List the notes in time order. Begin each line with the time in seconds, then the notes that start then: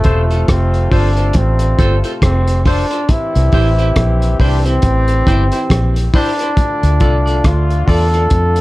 Already playing: C3 A3 F4
0.04 E1 F4 A4 C5, kick, closed hi-hat
0.31 F4 A4 C5, closed hi-hat
0.48 F1 C4, kick, cross-stick, closed hi-hat
0.74 closed hi-hat
0.91 G1 D4 F4 A4 C5, kick, open hi-hat
1.17 F4 A4 C5, closed hi-hat
1.33 A1 C4, kick, closed hi-hat
1.59 closed hi-hat
1.78 G1 F4 A4 C5, kick, closed hi-hat
2.04 F4 A4 C5, closed hi-hat
2.22 F1 C4, kick, cross-stick, closed hi-hat
2.48 closed hi-hat
2.65 D4 F4 A4 C5, kick, open hi-hat
2.91 F4 A4 C5, closed hi-hat
3.09 E3 C4 E4 G4, kick, closed hi-hat
3.35 C2, closed hi-hat
3.52 A1 E4 G4 C5, kick, open hi-hat
3.78 E4 G4 C5, closed hi-hat
3.96 A#1, kick, cross-stick, closed hi-hat
4.22 closed hi-hat
4.40 C2 D4 E4 G4 C5, kick, open hi-hat
4.65 C4 E4 G4 C5, closed hi-hat
4.82 A1, kick, closed hi-hat
5.08 closed hi-hat
5.27 G1 E4 G4 C5, kick, closed hi-hat
5.52 E4 G4 C5, closed hi-hat
5.70 A#1, kick, cross-stick, closed hi-hat
5.96 closed hi-hat
6.14 D4 E4 G4 C5, kick, open hi-hat
6.39 E4 G4 C5, closed hi-hat
6.57 D3 A3 F4, kick, closed hi-hat
6.83 D2, closed hi-hat
7.00 C2 F4 A4 D5, kick, closed hi-hat
7.26 F4 A4 D5, closed hi-hat
7.44 D2 F4, kick, cross-stick, closed hi-hat
7.70 closed hi-hat
7.87 E2 F4 A4 D5, kick, open hi-hat
8.13 F4 A4 D5, closed hi-hat
8.30 F2, kick, closed hi-hat
8.56 closed hi-hat